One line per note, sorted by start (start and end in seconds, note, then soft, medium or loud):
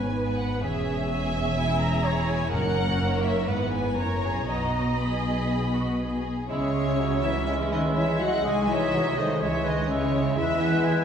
0.00 0.60 G#1 soft
0.00 0.60 G#2 soft
0.00 0.58 B3 soft
0.00 0.14 C#4 soft
0.00 0.58 D#4 soft
0.00 0.14 B4 soft
0.00 0.58 B4 soft
0.00 0.37 G#5 medium
0.15 0.63 B3 soft
0.15 0.62 B4 soft
0.38 0.62 F#5 medium
0.61 2.53 E1 medium
0.61 2.54 E2 medium
0.61 2.49 G#3 medium
0.61 2.49 C#4 medium
0.61 1.09 C#4 soft
0.61 1.09 G#4 soft
0.61 1.10 G#4 medium
0.61 1.09 E5 medium
1.10 1.57 C#4 medium
1.10 1.56 G#4 medium
1.10 2.04 E5 medium
1.10 1.56 G#5 medium
1.58 2.04 E4 soft
1.58 2.51 G#4 soft
1.58 1.81 G#5 medium
1.80 2.28 A#5 medium
2.05 2.52 E4 medium
2.05 2.53 C#5 medium
2.29 2.53 G#5 medium
2.52 3.47 F#1 medium
2.52 3.48 F#2 medium
2.52 3.21 F#2 medium
2.52 3.45 A#3 medium
2.52 2.98 C#4 soft
2.52 2.77 D#4 medium
2.52 3.01 A#4 medium
2.52 3.47 A#4 medium
2.52 3.24 F#5 medium
2.77 3.01 C#4 medium
3.01 3.50 A#3 medium
3.01 3.49 D#4 medium
3.01 3.50 C#5 medium
3.26 3.49 E5 medium
3.48 3.98 G#1 medium
3.48 3.98 G#2 medium
3.48 3.98 B3 medium
3.48 3.99 B3 soft
3.48 3.98 E4 soft
3.48 3.98 B4 medium
3.48 3.98 B4 soft
3.48 3.74 F#5 medium
3.74 3.98 G#5 medium
3.97 4.48 F#1 medium
3.97 4.48 F#2 soft
3.97 4.48 C#4 soft
3.97 4.49 C#4 soft
3.97 4.48 E4 soft
3.97 4.23 A#4 medium
3.97 4.47 C#5 medium
3.97 4.47 A#5 medium
4.24 4.49 G#4 soft
4.47 6.25 B1 soft
4.47 6.26 B2 soft
4.47 4.98 B3 soft
4.47 4.98 D#4 soft
4.47 4.94 D#4 soft
4.47 4.94 F#4 soft
4.47 6.25 D#5 soft
4.47 4.98 A#5 medium
4.98 6.23 B3 soft
4.98 6.23 D#4 soft
4.98 5.70 G#4 medium
4.98 6.25 B5 soft
5.74 5.99 F#4 soft
6.00 6.49 G#4 soft
6.49 8.41 C#2 medium
6.49 7.19 C#3 medium
6.49 7.01 G#3 soft
6.49 8.45 G#3 medium
6.49 8.41 C#4 medium
6.49 7.19 C#4 medium
6.49 8.40 E4 medium
6.49 7.19 G#4 medium
6.49 7.19 C#5 medium
6.49 6.73 E5 soft
6.74 8.41 E5 medium
7.00 7.50 F#3 soft
7.22 7.46 E3 medium
7.22 7.46 E4 medium
7.22 7.29 C#5 medium
7.22 7.45 E5 medium
7.46 7.71 E3 medium
7.46 8.44 G#3 medium
7.46 7.71 E4 medium
7.46 7.52 C#5 medium
7.46 7.54 E5 medium
7.70 7.96 D#3 medium
7.70 7.83 D#4 medium
7.70 7.95 B4 soft
7.70 7.81 D#5 medium
7.95 8.20 E3 medium
7.95 8.19 E4 medium
7.95 8.20 C#5 medium
7.95 8.21 E5 medium
8.20 8.45 F#3 medium
8.20 8.31 F#4 medium
8.20 8.44 D#5 medium
8.20 8.45 F#5 medium
8.43 9.40 C2 medium
8.43 8.96 G#3 medium
8.43 8.69 G#3 medium
8.43 10.37 G#3 medium
8.43 9.38 D#4 medium
8.43 9.38 F#4 medium
8.43 8.55 G#4 medium
8.43 9.42 D#5 soft
8.43 8.51 D#5 medium
8.43 8.70 G#5 medium
8.68 9.17 E3 medium
8.68 9.16 E4 medium
8.68 9.17 C#5 medium
8.68 9.18 E5 medium
8.94 9.19 F#3 medium
9.17 9.42 D#3 medium
9.17 9.44 A3 medium
9.17 9.41 D#4 medium
9.17 9.42 C5 medium
9.17 9.42 D#5 medium
9.39 10.38 C#2 medium
9.39 9.66 E3 medium
9.39 10.38 G#3 medium
9.39 10.34 C#4 medium
9.39 9.64 E4 medium
9.39 11.04 E4 medium
9.39 9.89 C#5 medium
9.39 9.66 C#5 medium
9.39 9.66 E5 medium
9.64 9.90 D#3 medium
9.64 9.89 D#4 medium
9.64 9.90 B4 medium
9.64 9.90 D#5 medium
9.88 10.38 C#3 medium
9.88 10.36 C#4 medium
9.88 10.37 G#4 medium
9.88 10.38 C#5 medium
9.88 10.37 E5 medium
10.36 11.04 E2 medium
10.36 11.04 E3 medium
10.36 11.04 G#3 medium
10.36 11.04 B3 medium
10.36 11.04 E4 medium
10.36 11.04 E5 medium
10.36 10.62 E5 medium
10.40 11.04 B4 medium
10.60 10.86 F#5 medium
10.85 11.04 G#5 medium